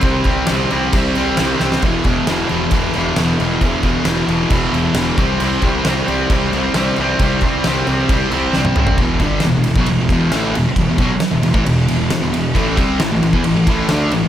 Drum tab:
CC |x-x-x-x-x-x-x---|x-x-x-x-x-x-x-x-|x-x-x-x-x-x-x-x-|x-x-x-x-x-x-x-x-|
RD |----------------|----------------|----------------|----------------|
SD |----o-------o-oo|----o-------o---|----o-------o---|----o-------o---|
T1 |----------------|----------------|----------------|----------------|
T2 |----------------|----------------|----------------|----------------|
FT |----------------|----------------|----------------|----------------|
BD |o-o-----o-------|o-o-----o-------|o-o-----o-----o-|--o-----o-------|

CC |x-x-x-x-x-x-----|----------------|----------------|----------------|
RD |----------------|x-x-x-x-x-x-x-x-|x-x-x-x-x-x-x-x-|x-x-x-x-x-x-x-x-|
SD |----o-------o---|----o-------o---|----o-------o---|----o-------o---|
T1 |-------------o--|----------------|----------------|----------------|
T2 |--------------o-|----------------|----------------|----------------|
FT |---------------o|----------------|----------------|----------------|
BD |o-o-----o-------|o-o----o--o-----|o-o----o--------|o-o----o--o-----|